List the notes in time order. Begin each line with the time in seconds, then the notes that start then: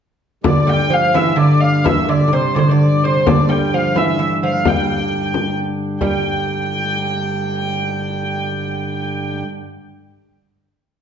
0.43 G2 D3 D5, frame drum
0.67 G3 G5
0.90 F3 F5
1.14 E3 E5, frame drum
1.36 D3 D5
1.61 F5
1.84 E3 E5, frame drum
2.09 D3 D5
2.28 D3
2.33 C3 C5
2.55 D3 C5 D5, frame drum
2.70 D3 D5
3.04 C3 C5
3.27 D3 D5, frame drum
3.49 G3 G5
3.74 F3 F5
3.96 E3 E5, frame drum
4.19 E3 E5
4.43 F3 F5
4.65 G3 G5, frame drum
4.88 frame drum
5.34 frame drum
6.00 G2 D3 G3 G5, frame drum